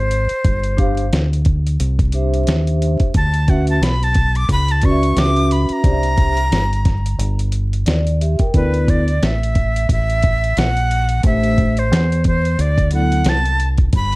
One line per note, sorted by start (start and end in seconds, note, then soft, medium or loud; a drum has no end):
0.00 0.28 G#1 loud
0.00 1.27 C5 medium
0.11 closed hi-hat medium
0.29 muted fingered electric bass stroke soft
0.29 closed hi-hat soft
0.45 1.09 G1 loud
0.45 kick loud
0.45 closed hi-hat medium
0.64 closed hi-hat soft
0.77 1.03 D4 medium
0.77 1.03 G4 medium
0.77 1.03 C5 medium
0.77 1.04 F5 loud
0.77 kick loud
0.77 closed hi-hat medium
0.97 closed hi-hat medium
1.12 1.76 D2 medium
1.12 snare loud
1.12 closed hi-hat medium
1.33 closed hi-hat soft
1.45 kick loud
1.45 closed hi-hat medium
1.67 closed hi-hat medium
1.80 2.44 C2 loud
1.80 closed hi-hat loud
1.99 kick medium
1.99 closed hi-hat soft
2.12 3.09 D4 medium
2.12 3.09 G4 medium
2.12 3.09 C5 medium
2.12 3.10 E5 medium
2.12 closed hi-hat medium
2.34 closed hi-hat soft
2.47 2.98 D#2 loud
2.47 snare loud
2.47 closed hi-hat loud
2.67 closed hi-hat soft
2.82 closed hi-hat medium
3.00 muted fingered electric bass stroke soft
3.00 kick medium
3.00 closed hi-hat soft
3.14 3.79 D2 loud
3.14 3.51 A5 medium
3.14 kick loud
3.14 closed hi-hat medium
3.34 closed hi-hat soft
3.48 3.73 C#4 medium
3.48 3.74 F#4 medium
3.48 3.74 B4 medium
3.48 3.74 E5 medium
3.48 3.68 F#5 medium
3.48 kick medium
3.48 closed hi-hat medium
3.67 3.85 A5 medium
3.67 closed hi-hat medium
3.81 4.46 B1 loud
3.81 4.05 B5 loud
3.81 snare loud
3.81 closed hi-hat medium
4.03 4.38 A5 loud
4.03 closed hi-hat soft
4.14 kick medium
4.14 closed hi-hat medium
4.35 4.50 D6 loud
4.35 closed hi-hat medium
4.49 5.13 C#2 medium
4.49 4.73 B5 loud
4.49 kick medium
4.49 closed hi-hat loud
4.68 4.87 A5 medium
4.68 closed hi-hat medium
4.82 5.78 C#4 medium
4.82 5.78 F#4 medium
4.82 5.79 B4 medium
4.82 4.91 D5 medium
4.82 5.20 C#6 loud
4.82 kick medium
4.82 closed hi-hat medium
4.90 5.82 E5 medium
5.03 closed hi-hat soft
5.16 5.67 C#2 medium
5.16 5.54 D6 loud
5.16 snare loud
5.16 closed hi-hat loud
5.36 closed hi-hat soft
5.51 5.74 B5 medium
5.51 closed hi-hat medium
5.69 7.40 A#5 loud
5.69 muted fingered electric bass stroke soft
5.69 closed hi-hat soft
5.83 6.48 C2 medium
5.83 6.33 D4 medium
5.83 6.33 G4 medium
5.83 6.33 C5 medium
5.83 5.92 D5 medium
5.83 kick loud
5.83 closed hi-hat loud
5.91 6.37 E5 medium
6.03 closed hi-hat medium
6.18 kick loud
6.18 closed hi-hat medium
6.37 closed hi-hat medium
6.51 7.15 G1 medium
6.51 snare loud
6.51 closed hi-hat medium
6.73 closed hi-hat soft
6.85 kick loud
6.85 snare soft
6.85 closed hi-hat medium
7.06 closed hi-hat medium
7.18 7.83 G1 medium
7.18 closed hi-hat loud
7.39 closed hi-hat soft
7.52 closed hi-hat medium
7.73 closed hi-hat soft
7.86 8.37 D#2 medium
7.86 8.18 D5 medium
7.86 snare loud
7.86 closed hi-hat medium
8.07 closed hi-hat soft
8.21 8.39 G4 medium
8.21 8.39 E5 medium
8.21 closed hi-hat medium
8.39 8.72 A#4 medium
8.39 8.71 G5 medium
8.39 muted fingered electric bass stroke soft
8.39 kick medium
8.39 closed hi-hat soft
8.54 9.18 D2 medium
8.54 9.03 B3 medium
8.54 9.03 E4 medium
8.54 9.03 A4 medium
8.54 8.91 B4 medium
8.54 9.04 D5 medium
8.54 kick loud
8.54 closed hi-hat medium
8.74 closed hi-hat soft
8.88 9.26 D5 medium
8.88 kick loud
8.88 closed hi-hat medium
9.08 closed hi-hat soft
9.22 9.86 A1 medium
9.22 9.90 E5 medium
9.22 snare loud
9.22 closed hi-hat medium
9.43 closed hi-hat soft
9.55 kick medium
9.55 closed hi-hat medium
9.76 closed hi-hat medium
9.89 10.53 A1 medium
9.89 10.60 E5 medium
9.89 kick medium
9.89 closed hi-hat loud
10.10 closed hi-hat soft
10.22 kick loud
10.22 closed hi-hat medium
10.44 closed hi-hat soft
10.57 11.21 A#1 medium
10.57 11.25 F#5 loud
10.57 snare loud
10.57 closed hi-hat medium
10.77 closed hi-hat soft
10.91 closed hi-hat medium
11.09 closed hi-hat soft
11.23 11.92 A1 loud
11.23 11.72 A3 medium
11.23 11.73 D4 medium
11.23 11.73 G4 medium
11.23 11.73 C5 medium
11.23 11.80 E5 loud
11.23 kick loud
11.23 closed hi-hat medium
11.44 closed hi-hat soft
11.58 kick medium
11.58 closed hi-hat medium
11.77 12.26 C5 medium
11.77 closed hi-hat soft
11.92 12.55 E2 medium
11.92 snare loud
11.92 closed hi-hat medium
12.12 closed hi-hat soft
12.24 12.63 C5 medium
12.24 kick medium
12.24 closed hi-hat medium
12.45 closed hi-hat soft
12.59 13.23 D2 loud
12.59 12.93 D5 medium
12.59 closed hi-hat medium
12.78 kick medium
12.78 closed hi-hat soft
12.91 13.33 F#3 medium
12.91 13.34 B3 medium
12.91 13.34 E4 medium
12.91 13.34 A4 medium
12.91 13.30 F#5 medium
12.91 closed hi-hat medium
13.12 closed hi-hat soft
13.24 13.90 C2 medium
13.24 snare loud
13.24 closed hi-hat loud
13.29 13.69 A5 loud
13.45 closed hi-hat soft
13.60 closed hi-hat medium
13.78 kick medium
13.78 closed hi-hat soft
13.93 14.15 G1 loud
13.93 14.15 B5 loud
13.93 kick loud
13.93 closed hi-hat medium
14.12 closed hi-hat soft